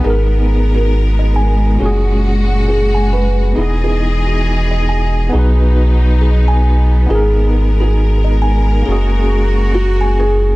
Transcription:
0.00 1.71 B3 medium
0.00 1.77 B3 medium
0.00 1.73 D#4 medium
0.04 1.77 G#1 medium
0.04 3.53 G#3 medium
0.04 0.72 G#4 medium
0.04 1.74 G#4 medium
0.04 0.67 A#4 medium
0.04 1.79 A#4 medium
0.10 1.76 A#4 medium
0.74 0.91 F#4 medium
0.74 1.31 A#4 medium
1.19 1.35 D#5 medium
1.36 1.51 G#5 medium
1.76 3.47 A#2 medium
1.76 3.49 C#4 medium
1.80 3.53 F#1 medium
1.80 3.56 A#2 medium
1.80 3.55 F#4 medium
1.80 3.50 F#4 medium
1.80 2.67 G#4 medium
1.85 3.52 G#4 medium
2.68 2.92 G#4 medium
2.68 3.09 G#4 medium
2.94 3.11 G#5 medium
3.12 3.75 B4 medium
3.52 5.24 B3 medium
3.52 5.25 D#4 medium
3.57 5.30 E1 medium
3.57 5.32 E3 medium
3.57 5.27 E4 medium
3.57 4.25 G#4 medium
3.57 5.32 G#4 medium
3.57 5.32 D#5 medium
3.61 5.28 G#4 medium
3.84 4.40 G#4 medium
4.27 4.44 F#4 medium
4.71 4.87 D#5 medium
4.89 5.04 G#5 medium
5.29 7.01 B3 medium
5.29 8.82 B3 medium
5.29 7.02 D#4 medium
5.33 7.06 B1 medium
5.33 7.08 F#3 medium
5.33 7.08 D#4 medium
5.33 7.04 F#4 medium
5.33 6.20 G#4 medium
5.39 7.05 B4 medium
6.21 6.45 G#4 medium
6.48 6.65 G#5 medium
7.06 8.83 G#1 medium
7.06 10.56 G#3 medium
7.06 8.77 B3 medium
7.06 8.79 D#4 medium
7.06 10.56 A#4 medium
7.10 7.72 G#4 medium
7.10 7.78 G#4 medium
7.10 8.80 G#4 medium
7.15 8.82 A#4 medium
7.80 7.97 F#4 medium
7.80 8.37 G#4 medium
8.24 8.40 D#5 medium
8.42 8.57 G#5 medium
8.82 10.54 A#3 medium
8.82 10.55 C#4 medium
8.82 9.72 G#4 medium
8.86 10.56 F#1 medium
8.86 10.56 F#4 medium
8.92 10.56 G#4 medium
9.74 10.15 F#4 medium
9.74 9.98 G#4 medium
10.01 10.18 G#5 medium
10.20 10.56 G#4 medium

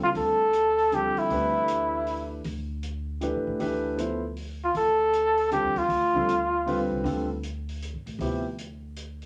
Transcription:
0.00 0.14 C#2 medium
0.00 0.34 D3 soft
0.00 0.35 G3 soft
0.00 0.35 C4 soft
0.00 0.36 F4 soft
0.00 0.09 F4 medium
0.00 0.35 A4 medium
0.15 1.13 D2 medium
0.15 0.96 A4 medium
0.15 open hi-hat soft
0.53 closed hi-hat soft
0.78 open hi-hat soft
0.92 1.50 D3 medium
0.92 1.51 F3 soft
0.92 1.50 G3 soft
0.92 1.50 C4 soft
0.92 1.20 G4 medium
0.92 1.51 A4 medium
0.92 closed hi-hat soft
1.16 2.33 E4 medium
1.16 muted upright bass stroke soft
1.16 open hi-hat soft
1.29 2.41 D2 medium
1.29 2.37 E3 medium
1.29 2.37 A3 medium
1.29 2.38 D4 soft
1.29 2.38 G4 soft
1.29 2.38 B4 medium
1.29 open hi-hat soft
1.68 closed hi-hat soft
2.07 open hi-hat soft
2.44 3.31 D2 medium
2.44 open hi-hat soft
2.83 closed hi-hat soft
3.21 3.58 E3 medium
3.21 3.58 A3 soft
3.21 3.58 D4 soft
3.21 3.59 G4 soft
3.21 3.60 B4 medium
3.21 closed hi-hat soft
3.34 3.46 G2 soft
3.47 3.59 A2 medium
3.59 4.71 D2 medium
3.59 3.97 E3 medium
3.59 3.97 A3 medium
3.59 3.97 D4 soft
3.59 3.97 G4 soft
3.59 3.98 B4 medium
3.59 open hi-hat soft
3.96 4.20 F3 soft
3.96 4.20 B3 soft
3.96 4.21 E4 soft
3.96 4.21 A4 soft
3.96 4.21 C5 medium
3.96 closed hi-hat soft
4.36 open hi-hat soft
4.65 4.76 F4 medium
4.75 5.60 D2 medium
4.75 5.49 A4 medium
4.75 open hi-hat soft
5.13 closed hi-hat soft
5.37 open hi-hat soft
5.51 5.74 D3 medium
5.51 5.74 G3 soft
5.51 5.74 C4 soft
5.51 5.74 F4 soft
5.51 5.80 G4 medium
5.51 5.75 A4 medium
5.51 closed hi-hat soft
5.63 5.75 E2 soft
5.75 5.88 D#2 medium
5.75 6.93 F4 medium
5.75 open hi-hat soft
5.89 6.87 D2 medium
5.89 open hi-hat soft
6.14 6.27 D3 medium
6.14 6.27 G3 soft
6.14 6.27 C4 medium
6.14 6.27 F4 soft
6.14 6.27 A4 medium
6.14 kick soft
6.29 closed hi-hat soft
6.66 7.02 D3 medium
6.66 7.02 G3 medium
6.66 7.04 C4 medium
6.66 7.04 F4 medium
6.66 7.26 B4 medium
6.66 open hi-hat soft
6.90 7.03 C2 medium
7.04 7.90 D2 medium
7.04 7.27 D3 medium
7.04 7.27 G3 soft
7.04 7.28 C4 soft
7.04 7.28 F4 medium
7.04 7.28 A4 medium
7.04 open hi-hat soft
7.43 closed hi-hat soft
7.69 open hi-hat soft
7.82 closed hi-hat soft
7.94 8.06 G2 soft
8.06 8.18 A2 medium
8.06 open hi-hat soft
8.19 9.26 D2 medium
8.19 8.43 C3 soft
8.19 8.43 F3 soft
8.19 8.43 B3 soft
8.19 8.43 E4 soft
8.19 8.43 G4 medium
8.19 open hi-hat soft
8.58 closed hi-hat soft
8.96 closed hi-hat soft
9.22 open hi-hat soft

